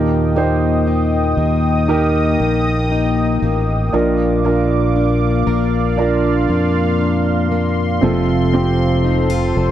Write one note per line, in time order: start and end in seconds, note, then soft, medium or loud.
0.00 1.33 D#2 medium
0.00 1.34 A#2 soft
0.00 3.94 D#3 medium
0.00 0.36 A#3 soft
0.00 7.99 A#3 medium
0.00 0.33 D#4 medium
0.00 0.33 G4 medium
0.00 0.34 A#4 medium
0.00 3.90 D#5 medium
0.00 3.90 G5 medium
0.00 3.90 D#6 medium
0.36 2.40 A#3 soft
0.36 1.81 D#4 medium
0.36 1.81 G4 medium
0.36 1.82 C5 medium
0.87 1.88 D#4 soft
1.37 2.36 D#2 medium
1.37 4.88 A#4 medium
1.88 3.83 D#4 medium
1.88 2.91 D#4 medium
1.88 3.84 G4 medium
1.88 3.84 A#4 medium
2.40 3.39 A#1 medium
2.40 3.43 A#3 soft
2.92 4.04 D#4 medium
3.42 3.90 A1 medium
3.42 4.44 A#3 soft
3.92 5.43 A#1 medium
3.92 8.03 A#2 medium
3.92 4.42 D4 medium
3.92 4.42 F4 medium
3.92 4.42 A#4 medium
3.92 7.99 D5 medium
3.92 9.71 F5 medium
3.92 5.97 D6 medium
4.44 6.49 A#3 soft
4.44 5.90 D4 medium
4.44 5.91 F4 medium
4.44 5.91 A#4 medium
4.96 5.97 D4 soft
5.47 6.45 A#1 medium
5.47 8.13 A#4 medium
5.97 7.92 D4 medium
5.97 7.00 D4 medium
5.97 7.92 F4 medium
5.97 7.93 A#4 medium
5.97 9.71 C6 medium
6.49 7.99 F2 medium
6.49 7.51 A#3 soft
7.01 8.13 D4 soft
7.52 8.13 A#3 soft
8.01 9.53 F1 medium
8.01 9.53 C3 medium
8.01 9.71 F3 medium
8.01 8.51 C4 medium
8.01 8.51 F4 medium
8.01 9.71 A4 medium
8.01 8.52 A4 medium
8.01 9.71 C5 medium
8.53 9.71 C4 medium
8.53 9.71 C4 soft
8.53 9.71 F4 medium
8.53 9.71 G4 medium
9.04 9.30 D#4 soft
9.30 9.71 F4 soft
9.56 9.71 F1 medium
9.56 9.71 A4 soft